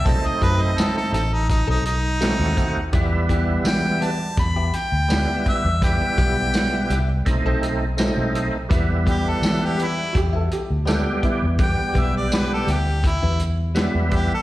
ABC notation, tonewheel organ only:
X:1
M:4/4
L:1/8
Q:"Swing 16ths" 1/4=83
K:Em
V:1 name="Tonewheel organ"
[A,C^D]3 z3 [A,CF]2 | [G,B,E]3 z3 [G,B,E]2 | [G,B,E]3 z [A,C^D]2 [A,CD]2 | [G,B,E]3 z3 [G,B,G]2 |
[G,B,G]3 z3 [G,B,E]2 |]